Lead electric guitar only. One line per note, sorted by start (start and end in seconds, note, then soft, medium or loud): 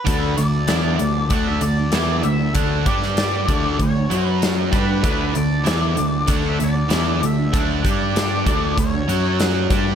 0.00 0.39 B4 medium
0.37 1.26 D5 medium
1.31 1.48 F#5 medium
1.48 1.62 E5 medium
1.62 2.24 D5 medium
2.24 2.55 E5 medium
2.55 2.87 F#5 medium
2.87 3.82 D5 medium
3.82 4.25 C#5 medium
4.25 4.39 B4 medium
4.75 5.37 B4 medium
5.37 6.32 D5 medium
6.32 6.44 F#5 loud
6.49 6.62 E5 medium
6.64 7.25 D5 medium
7.25 7.55 E5 medium
7.59 7.84 F#5 medium
7.91 8.76 D5 medium
8.79 9.36 C#5 medium